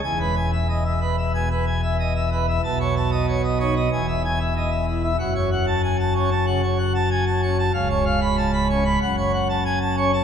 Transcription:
<<
  \new Staff \with { instrumentName = "Pipe organ" } { \time 4/4 \key e \major \tempo 4 = 94 gis''16 b'16 gis''16 e''16 dis''16 e''16 b'16 e''16 gis''16 b'16 gis''16 e''16 dis''16 e''16 b'16 e''16 | a''16 cis''16 a''16 dis''16 cis''16 dis''16 cis''16 dis''16 gis''16 e''16 gis''16 e''16 dis''16 e''16 e'16 e''16 | fis''16 cis''16 fis''16 a''16 gis''16 a''16 cis''16 a''16 fis''16 cis''16 fis''16 a''16 gis''16 a''16 cis''16 a''16 | eis''16 cis''16 eis''16 b''16 a''16 b''16 cis''16 b''16 fis''16 cis''16 fis''16 a''16 gis''16 a''16 cis''16 a''16 | }
  \new Staff \with { instrumentName = "Pipe organ" } { \clef bass \time 4/4 \key e \major << { e,2 b,16 r4. r16 | b,4. dis'16 r16 e,2 | fis,4. cis'16 r16 cis16 r4 r16 cis'16 r16 | cis,4. cis'16 r16 fis,4. cis'16 r16 | } \\ { e,,1 | b,,2 e,,2 | fis,,1 | cis,,2 fis,,2 | } >> }
>>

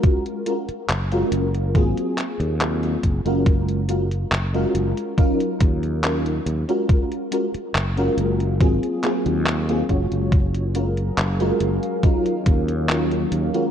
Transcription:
<<
  \new Staff \with { instrumentName = "FM electric piano" } { \time 4/4 \key ges \lydian \tempo 4 = 70 <aes des' f' ges' bes'>8 <aes des' f' ges' bes'>16 r8 <aes des' f' ges' bes'>8. <ges bes c' f' aes'>4 <ges bes c' f' aes'>8. <aes des' f' ges' bes'>16~ | <aes des' f' ges' bes'>8 <aes des' f' ges' bes'>16 r8 <aes des' f' ges' bes'>8. <ges des' ees' f' bes'>4 <ges des' ees' f' bes'>8. <aes des' f' ges' bes'>16~ | <aes des' f' ges' bes'>8 <aes des' f' ges' bes'>16 r8 <aes des' f' ges' bes'>8. <ges bes c' f' aes'>8 <ges bes c' f' aes'>8. <ges bes c' f' aes'>16 <aes des' f' ges' des''>8~ | <aes des' f' ges' des''>8 <aes des' f' ges' bes'>16 r8 <aes des' f' ges' bes'>8. <ges des' ees' f' bes'>4 <ges des' ees' f' bes'>8. <aes des' f' ges' bes'>16 | }
  \new Staff \with { instrumentName = "Ambient pad" } { \time 4/4 \key ges \lydian << { r1 | r1 | r1 | f''1 | } \\ { r1 | r1 | r1 | <ges des' aes' bes'>2 <ees ges bes>2 | } >> }
  \new Staff \with { instrumentName = "Fretless electric bass" } { \clef bass \time 4/4 \key ges \lydian r4 ges,,8 ges,,8 aes,,16 r8 ees,8. ges,,16 ges,,16~ | ges,,4 ges,,8 ges,,16 r8. ees,4 ees,16 r16 | r4 ges,,8 ges,,8 aes,,16 r8 ees,8. ges,,16 ges,,16~ | ges,,4 ges,,8 ges,,16 r8. ees,4 ees,16 r16 | }
  \new DrumStaff \with { instrumentName = "Drums" } \drummode { \time 4/4 <hh bd>16 hh16 hh16 hh16 <hc hh>16 hh16 hh16 hh16 <hh bd>16 hh16 <hc hh>16 hh16 <hc hh>16 hh16 <hh bd>16 hh16 | <hh bd>16 hh16 hh16 hh16 <hc hh>16 hh16 hh16 hh16 <hh bd>16 hh16 <hh bd>16 hh16 <hc hh>16 hh16 hh16 hh16 | <hh bd>16 hh16 hh16 hh16 <hc hh>16 hh16 hh16 hh16 <hh bd>16 hh16 <hc hh>16 hh16 <hc hh>16 hh16 <hh bd>16 hh16 | <hh bd>16 hh16 hh16 hh16 <hc hh>16 hh16 hh16 hh16 <hh bd>16 hh16 <hh bd>16 hh16 <hc hh>16 hh16 hh16 hh16 | }
>>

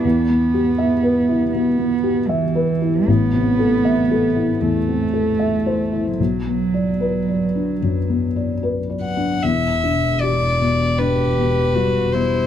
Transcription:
<<
  \new Staff \with { instrumentName = "Violin" } { \time 4/4 \key e \minor \tempo 4 = 77 r1 | r1 | r2. r8 fis''8 | e''4 d''4 b'4. c''8 | }
  \new Staff \with { instrumentName = "Felt piano" } { \time 4/4 \key e \minor \tuplet 3/2 { <e, e'>8 b8 g'8 e''8 b'8 e'8 b,8 b8 g'8 e''8 b'8 e'8 } | \tuplet 3/2 { a,,8 c8 a'8 e''8 a'8 e'8 e,8 c'8 a'8 e''8 c''8 e'8 } | \tuplet 3/2 { b,,8 b8 d''8 b'8 d''8 d'8 fis,8 b8 d''8 b'8 d''8 d'8 } | e,8 d'8 g'8 b,8 d'8 b,8 g8 b,8 | }
  \new Staff \with { instrumentName = "Cello" } { \time 4/4 \key e \minor b2 b4 e4 | b2 a2 | fis2. r4 | r2 g'4 fis'8 e'8 | }
  \new Staff \with { instrumentName = "Double bass" } { \clef bass \time 4/4 \key e \minor r1 | r1 | r1 | e,,1 | }
>>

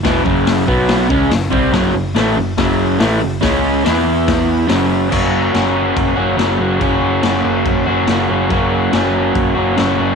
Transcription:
<<
  \new Staff \with { instrumentName = "Overdriven electric guitar" } { \clef bass \time 4/4 \key fis \mixolydian \tempo 4 = 142 <e, b, e>8 <fis, cis fis>4 <b, fis b>4 <cis gis cis'>8 <fis, cis>8 <bis, g bis>8 | <fis, cis fis>8 <fis, cis>8 <a, e a>8 <fis, cis>8 <fis, cis fis>4 <a, e a>8 <fis, cis>8 | <cis gis cis'>4 <e b e'>2 <fis, cis fis>4 | <fis, cis fis ais cis' fis'>4 <fis ais cis' fis'>4. <fis ais cis' fis'>8 <fis, cis fis ais cis' fis'>8 <fis ais cis' fis'>8 |
<fis, cis fis ais cis' fis'>4 <fis ais cis' fis'>4. <fis ais cis' fis'>8 <fis, cis fis ais cis' fis'>8 <fis ais cis' fis'>8 | <fis, cis fis ais cis' fis'>4 <fis ais cis' fis'>4. <fis ais cis' fis'>8 <fis, cis fis ais cis' fis'>8 <fis ais cis' fis'>8 | }
  \new Staff \with { instrumentName = "Picked electric bass" } { \clef bass \time 4/4 \key fis \mixolydian e,,8 fis,,4 b,,4 cis,8 fis,,8 bis,,8 | fis,,8 fis,,8 a,,8 fis,,8 fis,,4 a,,8 fis,,8 | cis,4 e,2 fis,,4 | fis,,4 fis,,4 fis,,8 fis,,8 fis,,8 fis,,8 |
fis,,8 fis,,8 fis,,8 fis,,8 fis,,8 fis,,8 fis,,8 fis,,8 | fis,,4 fis,,4 fis,,8 fis,,8 fis,,8 fis,,8 | }
  \new DrumStaff \with { instrumentName = "Drums" } \drummode { \time 4/4 <hho bd sn>8 bd8 <hho sn>8 bd8 <hho sn>8 bd8 <hho sn>8 bd8 | <hho bd sn>4 <hho sn>4 <hho bd sn>4 <hho sn>4 | <hho bd sn>4 <hho sn>4 <hho bd sn>4 <hho sn>4 | <cymc bd>4 <cymc sn>4 <cymc bd>4 <cymc sn>4 |
<cymc bd>4 <cymc sn>4 <cymc bd>4 <cymc sn>4 | <cymc bd>4 <cymc sn>4 <cymc bd>4 <cymc sn>4 | }
>>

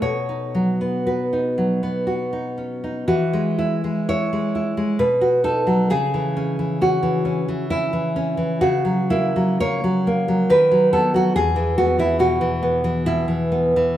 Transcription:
\new Staff \with { instrumentName = "Nylon-string guitar" } { \time 3/4 \key e \major \tempo 4 = 66 << { cis''4 b'4 r4 | fis'8 e'8 cis''4 b'8 a'8 | gis'4 fis'4 e'4 | fis'8 e'8 cis''4 b'8 a'16 fis'16 |
gis'8 fis'16 e'16 fis'4 e'4 | } \\ { b,16 dis'16 fis16 b16 fis'16 dis'16 fis16 b16 fis'16 dis'16 cis'16 dis'16 | e16 gis8 gis16 e'16 gis16 e'16 gis16 b,16 fis'16 dis'16 fis16 | cis16 e16 cis'16 e16 cis'16 e16 cis'16 e16 cis'16 e16 cis'16 e16 | cis16 fis16 ais16 fis16 ais16 fis16 ais16 fis16 dis16 fis16 b16 fis16 |
e,16 e16 b16 e16 b,16 e16 b16 e16 b,16 e16 b16 e16 | } >> }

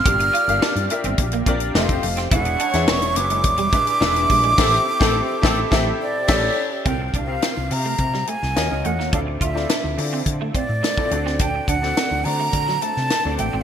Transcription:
<<
  \new Staff \with { instrumentName = "Flute" } { \time 4/4 \key d \minor \tempo 4 = 106 f'''4.~ f'''16 r4 r16 f''4 | fis''4 cis'''8 d'''2~ d'''8~ | d'''2~ d'''8 d''4. | g''16. g''32 f''4 bes''4 gis''4 ges''8 |
f''8 e''4. r8 d''4. | g''8 fis''4 bes''4 a''4 g''16. r32 | }
  \new Staff \with { instrumentName = "Grand piano" } { \time 4/4 \key d \minor <d' f' g' bes' f''>8. <d' f' g' bes' f''>8. <d' f' g' bes' e''>8. r16 <d' f' g' bes' d''>8 <c' f' g' a' ees''>8. r16 | <d' e' gis' b' e''>8. <d' e' gis' b' e''>8. <d' e' fis' gis' b' e''>8. r16 <d' e' gis' b' e''>8 <d' e' gis' b' e''>8. r16 | <c' e' g' a' e''>8 r16 <c' e' g' a' g''>8 r16 <c' e' g' a' e''>8 <c' e' g' a' e''>8 r8 <cis' e' g' a' e''>8 r8 | <c' f' g' bes' f''>8. <c' f' g' bes' f''>8. <c' f' g' bes' e'' f''>4. <des' f' ges' bes' ees''>16 <des' f' ges' bes' ees''>8. |
<c' e' f' a' d''>8. <c' e' f' a' d''>8. <c' e' f' a' d''>4. r16 <c' e' f' a' d''>16 <c' d' fis' a' d''>8~ | <c' d' fis' a' d''>8 r16 <c' d' fis' a' d''>8. <a c' d' fis' d''>4. r16 <c' d' fis' a' d''>8. | }
  \new Staff \with { instrumentName = "Clean electric guitar" } { \time 4/4 \key d \minor g'16 r16 f'16 r16 d'16 r8 c'16 r16 bes16 c'16 r16 a16 r8 c'16 | e'16 r16 d'16 r16 c'16 r8 gis16 r16 g16 gis16 r8. g16 gis16 | r1 | c'16 r16 d'16 r16 c'16 r8 a16 r16 g16 a16 r8. a16 bes16 |
d'16 r16 f'16 r16 d'16 r8 c'16 r16 a16 c'16 r16 a16 r8 c'16 | d'16 r16 d'16 r16 c'16 r8 a16 r16 fis16 a16 r8. a16 c'16 | }
  \new Staff \with { instrumentName = "Horn section" } { \time 4/4 \key d \minor <bes d' g' d''>2~ <bes d' g' d''>8 r8 <a c' g' c''>8 r8 | <gis cis' e' cis''>2~ <gis cis' e' cis''>8 r8 <gis b e' b'>8 r8 | <e a c' a'>8 r16 <e a c' a'>8 r16 <e a c' a'>8 <e a c' a'>8 r8 <e g cis' g'>8 r8 | r1 |
r1 | r1 | }
  \new Staff \with { instrumentName = "Fretless electric bass" } { \clef bass \time 4/4 \key d \minor g,,8 r16 g,,16 r16 g,16 r16 g,,16 bes,,8 bes,,8 f,,8 f,,8 | e,,8 r16 e,16 e,,8 fis,,8 e,,8 r8 e,,8 bes,,8 | a,,8 r16 a,,8 r16 a,,8 a,,8 r8 a,,8 r8 | c,8 c,8 r16 c,16 c8 c8 r16 c,16 ees,16 des,16 e,16 ees,16 |
d,8 d,8 r16 d,16 d8 d8 r16 a,16 r8 d,8~ | d,8 d,8 r16 d,16 d8 d8 r16 c16 r16 d,16 a,,16 gis,,16 | }
  \new DrumStaff \with { instrumentName = "Drums" } \drummode { \time 4/4 <hh bd>16 hh16 hh16 hh16 sn16 hh16 hh16 hh16 <hh bd>16 hh16 <hh bd>16 hh16 sn16 <hh bd>16 hho16 <hh sn>16 | <hh bd>16 hh16 hh16 <hh sn>16 sn16 hh16 hh16 hh16 <hh bd>16 hh16 <hh bd>16 hh16 sn16 hh16 <hho bd>16 hh16 | <cymc bd sn>8. <bd sn>16 r8 <bd sn>8 <bd sn>4 <cymc bd sn>4 | <hh bd>8 <hh bd>8 <hh sn>8 hho8 <hh bd>16 sn16 hh16 sn16 <hh sn>8 hh16 sn16 |
<hh bd>8 <hh bd>16 sn16 <hh sn>8 hho8 <hh bd>8 <hh bd>8 <hh sn>16 bd16 hh16 sn16 | <hh bd>8 <hh bd>16 sn16 <hh sn>8 hho8 <hh bd>16 sn16 hh16 sn16 <hh sn>8 hh8 | }
>>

